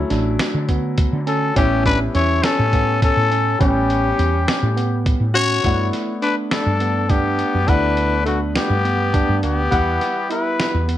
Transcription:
Already playing: grand piano F#3 A3 C#4 E4
0.10 fretless electric bass A1, tine electric piano D4, snare, closed hi-hat
0.39 snare, closed hi-hat
0.54 fretless electric bass D3
0.69 tine electric piano B3, kick, closed hi-hat
0.98 kick, closed hi-hat
1.13 fretless electric bass D3
1.27 tine electric piano C#4, alto saxophone C#4, trumpet A4, closed hi-hat
1.55 fretless electric bass A1, grand piano G3 B3 C#4 E4, tine electric piano C#4, alto saxophone C#4, trumpet G4, kick, closed hi-hat
1.85 alto saxophone D4, trumpet B4, kick, closed hi-hat
2.14 fretless electric bass E2, tine electric piano C#4, alto saxophone E4, trumpet C#5, closed hi-hat
2.43 alto saxophone C#4, trumpet A4, snare, closed hi-hat
2.59 fretless electric bass A2
2.73 tine electric piano B3, kick, closed hi-hat
3.02 alto saxophone C#4, trumpet A4, kick, closed hi-hat
3.17 fretless electric bass A2
3.31 tine electric piano C#4, closed hi-hat
3.59 fretless electric bass A1, grand piano G3 B3 C#4 G4, tine electric piano C#4, alto saxophone C#4, trumpet G4, kick, closed hi-hat
3.90 closed hi-hat
4.18 fretless electric bass E2, tine electric piano C#4, closed hi-hat
4.48 snare, closed hi-hat
4.62 fretless electric bass A2
4.76 tine electric piano B3, closed hi-hat
5.06 kick, closed hi-hat
5.20 fretless electric bass A2
5.34 tine electric piano C#4, alto saxophone F#4, trumpet C#5, closed hi-hat
5.63 fretless electric bass G2, grand piano A3 B3 D4 F#5, tine electric piano E4, kick, closed hi-hat
5.93 snare, closed hi-hat
6.22 alto saxophone D4, tine electric piano D4, trumpet B4, closed hi-hat
6.51 alto saxophone D4, trumpet A4, snare, closed hi-hat
6.66 fretless electric bass G2
6.80 tine electric piano B3, closed hi-hat
7.09 alto saxophone B3, tine electric piano D4, trumpet G4, kick, closed hi-hat
7.39 closed hi-hat
7.54 fretless electric bass F#2
7.67 fretless electric bass D2, grand piano A3 B3 D4 F#5, alto saxophone D4, tine electric piano E4, trumpet B4, kick, closed hi-hat
7.97 closed hi-hat
8.26 alto saxophone A3, tine electric piano D4, trumpet F#4, closed hi-hat
8.56 alto saxophone B3, trumpet G4, snare, closed hi-hat
8.70 fretless electric bass G2
8.85 tine electric piano B3, closed hi-hat
9.13 tine electric piano D4, kick, closed hi-hat
9.29 fretless electric bass G2
9.43 fretless electric bass D2, alto saxophone B3, trumpet G4, closed hi-hat
9.70 fretless electric bass E2, grand piano G3 B3 E4 F#5, tine electric piano F#5, kick, closed hi-hat
10.01 snare, closed hi-hat
10.30 tine electric piano E4, alto saxophone E4, trumpet B4, closed hi-hat
10.60 snare, closed hi-hat
10.74 fretless electric bass E2
10.88 tine electric piano B3, closed hi-hat

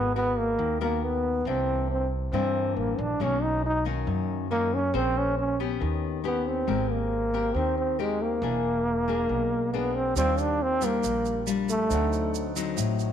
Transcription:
Already playing: upright bass G#1, nylon-string guitar G#3 B3 F#4 A#4, trombone B3
0.16 trombone B3, nylon-string guitar F#4 A#4
0.38 trombone A#3
0.58 upright bass D#2, nylon-string guitar D#3
0.81 trombone A#3, nylon-string guitar B3 F#4 A#4
1.04 trombone B3
1.45 upright bass C2, nylon-string guitar C3 E3 A#3 D4, trombone C4
1.92 trombone C4
2.33 upright bass G2, nylon-string guitar G2 E3 A#3 D4, trombone C4
2.77 upright bass A1, trombone A#3
2.99 upright bass A#1, trombone D4
3.20 upright bass B1, nylon-string guitar B2 D#3 A#3 C#4, trombone C#4
3.43 trombone D#4
3.66 trombone D#4
3.85 nylon-string guitar D#3 A#3 C#4
4.07 nylon-string guitar F#2, upright bass F#2
4.51 nylon-string guitar D#3 A#3 C#4, trombone A#3
4.74 trombone C#4
4.94 upright bass A#1, nylon-string guitar A#3 C#4 G#4 C5, trombone C4
5.18 trombone C#4
5.39 trombone C#4
5.60 nylon-string guitar B3 C#4 G4
5.80 upright bass D#2, nylon-string guitar D#3
6.24 nylon-string guitar B3 C#4 G4, trombone B3
6.47 trombone C4
6.67 upright bass G#1, nylon-string guitar G#3 C4 G4 A#4
6.91 trombone A#3
7.34 nylon-string guitar C4 G4 A#4
7.55 upright bass D#2, nylon-string guitar D#3, trombone C4
7.78 trombone C4
7.99 trombone G#3, nylon-string guitar C4 G4 A#4
8.22 trombone A#3
8.42 upright bass E1, nylon-string guitar E3 A#3 D4 G#4
9.08 nylon-string guitar A#3 D4 G#4
9.29 upright bass B1, nylon-string guitar B2
9.74 nylon-string guitar A#3 D4 G#4, trombone B3
9.96 trombone C4
10.16 upright bass D#2, nylon-string guitar D#3 G3 D4 F4, trombone C4, grand piano G4 D5, shaker
10.20 grand piano F5
10.38 trombone D4, shaker
10.62 trombone C4
10.81 nylon-string guitar G3 D4 F4, trombone A#3, shaker
11.04 upright bass A#1, nylon-string guitar A#2, shaker
11.25 shaker
11.47 nylon-string guitar G3 D4 F4, shaker
11.69 trombone A3, shaker
11.89 upright bass D2, nylon-string guitar D3 F#3 C4 D#4, grand piano D#4 C5 D5, shaker
11.94 grand piano F#5
12.13 shaker
12.35 shaker
12.56 nylon-string guitar F#3 C4 D#4, shaker
12.77 upright bass A1, nylon-string guitar A2, shaker
12.99 shaker

